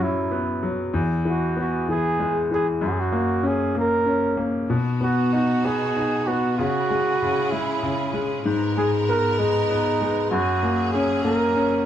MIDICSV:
0, 0, Header, 1, 4, 480
1, 0, Start_track
1, 0, Tempo, 625000
1, 724, Time_signature, 6, 3, 24, 8
1, 9105, End_track
2, 0, Start_track
2, 0, Title_t, "Flugelhorn"
2, 0, Program_c, 0, 56
2, 20, Note_on_c, 0, 64, 68
2, 553, Note_off_c, 0, 64, 0
2, 993, Note_on_c, 0, 66, 64
2, 1203, Note_off_c, 0, 66, 0
2, 1231, Note_on_c, 0, 66, 63
2, 1443, Note_off_c, 0, 66, 0
2, 1462, Note_on_c, 0, 68, 78
2, 1904, Note_off_c, 0, 68, 0
2, 1951, Note_on_c, 0, 68, 73
2, 2053, Note_off_c, 0, 68, 0
2, 2197, Note_on_c, 0, 66, 71
2, 2242, Note_on_c, 0, 68, 64
2, 2254, Note_off_c, 0, 66, 0
2, 2301, Note_on_c, 0, 66, 78
2, 2313, Note_off_c, 0, 68, 0
2, 2667, Note_on_c, 0, 68, 76
2, 2679, Note_off_c, 0, 66, 0
2, 2898, Note_off_c, 0, 68, 0
2, 2913, Note_on_c, 0, 70, 81
2, 3410, Note_off_c, 0, 70, 0
2, 3863, Note_on_c, 0, 66, 76
2, 4079, Note_off_c, 0, 66, 0
2, 4105, Note_on_c, 0, 66, 78
2, 4343, Note_on_c, 0, 68, 95
2, 4354, Note_off_c, 0, 66, 0
2, 4816, Note_on_c, 0, 66, 78
2, 4827, Note_off_c, 0, 68, 0
2, 5041, Note_off_c, 0, 66, 0
2, 5046, Note_on_c, 0, 66, 91
2, 5767, Note_on_c, 0, 64, 70
2, 5778, Note_off_c, 0, 66, 0
2, 6307, Note_off_c, 0, 64, 0
2, 6739, Note_on_c, 0, 68, 74
2, 6844, Note_off_c, 0, 68, 0
2, 6978, Note_on_c, 0, 70, 84
2, 7209, Note_on_c, 0, 63, 80
2, 7220, Note_off_c, 0, 70, 0
2, 7907, Note_off_c, 0, 63, 0
2, 7911, Note_on_c, 0, 66, 86
2, 8367, Note_off_c, 0, 66, 0
2, 8393, Note_on_c, 0, 68, 74
2, 8621, Note_off_c, 0, 68, 0
2, 8630, Note_on_c, 0, 70, 79
2, 9105, Note_off_c, 0, 70, 0
2, 9105, End_track
3, 0, Start_track
3, 0, Title_t, "String section"
3, 0, Program_c, 1, 48
3, 3600, Note_on_c, 1, 47, 58
3, 3602, Note_on_c, 1, 59, 54
3, 3604, Note_on_c, 1, 63, 51
3, 3605, Note_on_c, 1, 66, 68
3, 5030, Note_off_c, 1, 47, 0
3, 5031, Note_off_c, 1, 59, 0
3, 5032, Note_off_c, 1, 63, 0
3, 5033, Note_off_c, 1, 66, 0
3, 5046, Note_on_c, 1, 61, 60
3, 5049, Note_on_c, 1, 49, 61
3, 5049, Note_on_c, 1, 64, 57
3, 5050, Note_on_c, 1, 68, 65
3, 6472, Note_off_c, 1, 61, 0
3, 6474, Note_off_c, 1, 49, 0
3, 6474, Note_off_c, 1, 64, 0
3, 6474, Note_off_c, 1, 68, 0
3, 6504, Note_on_c, 1, 70, 71
3, 6505, Note_on_c, 1, 59, 53
3, 6508, Note_on_c, 1, 56, 56
3, 6509, Note_on_c, 1, 44, 66
3, 7920, Note_off_c, 1, 59, 0
3, 7920, Note_off_c, 1, 70, 0
3, 7922, Note_off_c, 1, 44, 0
3, 7922, Note_off_c, 1, 56, 0
3, 7949, Note_on_c, 1, 42, 62
3, 7950, Note_on_c, 1, 54, 57
3, 7952, Note_on_c, 1, 58, 54
3, 7952, Note_on_c, 1, 68, 69
3, 9105, Note_off_c, 1, 42, 0
3, 9105, Note_off_c, 1, 54, 0
3, 9105, Note_off_c, 1, 58, 0
3, 9105, Note_off_c, 1, 68, 0
3, 9105, End_track
4, 0, Start_track
4, 0, Title_t, "Grand piano"
4, 0, Program_c, 2, 0
4, 0, Control_c, 2, 64, 127
4, 0, Note_on_c, 2, 42, 55
4, 0, Note_on_c, 2, 54, 45
4, 0, Note_on_c, 2, 61, 43
4, 241, Note_on_c, 2, 59, 46
4, 469, Note_off_c, 2, 54, 0
4, 481, Note_on_c, 2, 54, 46
4, 691, Note_off_c, 2, 61, 0
4, 695, Note_off_c, 2, 42, 0
4, 708, Note_off_c, 2, 59, 0
4, 716, Note_off_c, 2, 54, 0
4, 718, Note_on_c, 2, 40, 57
4, 734, Control_c, 2, 64, 0
4, 889, Control_c, 2, 64, 127
4, 962, Note_on_c, 2, 52, 47
4, 1203, Note_on_c, 2, 59, 42
4, 1437, Note_off_c, 2, 52, 0
4, 1448, Note_on_c, 2, 52, 46
4, 1685, Note_on_c, 2, 56, 48
4, 1917, Note_off_c, 2, 52, 0
4, 1928, Note_on_c, 2, 52, 43
4, 2133, Note_off_c, 2, 40, 0
4, 2137, Note_off_c, 2, 59, 0
4, 2152, Note_off_c, 2, 56, 0
4, 2160, Note_off_c, 2, 52, 0
4, 2161, Note_on_c, 2, 42, 55
4, 2175, Control_c, 2, 64, 0
4, 2291, Control_c, 2, 64, 127
4, 2400, Note_on_c, 2, 58, 47
4, 2635, Note_on_c, 2, 61, 44
4, 2869, Note_off_c, 2, 58, 0
4, 2880, Note_on_c, 2, 58, 45
4, 3104, Note_off_c, 2, 61, 0
4, 3115, Note_on_c, 2, 61, 44
4, 3346, Note_off_c, 2, 58, 0
4, 3358, Note_on_c, 2, 58, 45
4, 3575, Note_off_c, 2, 42, 0
4, 3587, Note_off_c, 2, 61, 0
4, 3596, Note_off_c, 2, 58, 0
4, 3607, Note_on_c, 2, 47, 55
4, 3619, Control_c, 2, 64, 0
4, 3758, Control_c, 2, 64, 127
4, 3845, Note_on_c, 2, 59, 47
4, 4092, Note_on_c, 2, 63, 44
4, 4324, Note_off_c, 2, 59, 0
4, 4336, Note_on_c, 2, 59, 46
4, 4570, Note_off_c, 2, 63, 0
4, 4582, Note_on_c, 2, 63, 50
4, 4809, Note_off_c, 2, 59, 0
4, 4821, Note_on_c, 2, 59, 44
4, 5017, Note_off_c, 2, 47, 0
4, 5041, Note_off_c, 2, 63, 0
4, 5048, Note_off_c, 2, 59, 0
4, 5059, Control_c, 2, 64, 0
4, 5060, Note_on_c, 2, 49, 56
4, 5202, Control_c, 2, 64, 127
4, 5302, Note_on_c, 2, 56, 46
4, 5535, Note_off_c, 2, 49, 0
4, 5547, Note_on_c, 2, 49, 45
4, 5766, Note_off_c, 2, 56, 0
4, 5778, Note_on_c, 2, 56, 49
4, 6001, Note_off_c, 2, 49, 0
4, 6013, Note_on_c, 2, 49, 49
4, 6234, Note_off_c, 2, 56, 0
4, 6245, Note_on_c, 2, 56, 44
4, 6476, Note_off_c, 2, 49, 0
4, 6479, Note_off_c, 2, 56, 0
4, 6493, Note_on_c, 2, 44, 56
4, 6498, Control_c, 2, 64, 0
4, 6612, Control_c, 2, 64, 127
4, 6736, Note_on_c, 2, 56, 45
4, 6980, Note_on_c, 2, 59, 46
4, 7201, Note_off_c, 2, 56, 0
4, 7213, Note_on_c, 2, 56, 45
4, 7437, Note_off_c, 2, 59, 0
4, 7449, Note_on_c, 2, 59, 50
4, 7678, Note_off_c, 2, 56, 0
4, 7689, Note_on_c, 2, 56, 48
4, 7898, Note_off_c, 2, 44, 0
4, 7913, Note_off_c, 2, 59, 0
4, 7920, Note_off_c, 2, 56, 0
4, 7920, Note_on_c, 2, 42, 56
4, 7935, Control_c, 2, 64, 0
4, 8074, Control_c, 2, 64, 127
4, 8163, Note_on_c, 2, 58, 47
4, 8409, Note_on_c, 2, 61, 47
4, 8627, Note_off_c, 2, 58, 0
4, 8638, Note_on_c, 2, 58, 49
4, 8869, Note_off_c, 2, 61, 0
4, 8880, Note_on_c, 2, 61, 48
4, 9105, Note_off_c, 2, 42, 0
4, 9105, Note_off_c, 2, 58, 0
4, 9105, Note_off_c, 2, 61, 0
4, 9105, End_track
0, 0, End_of_file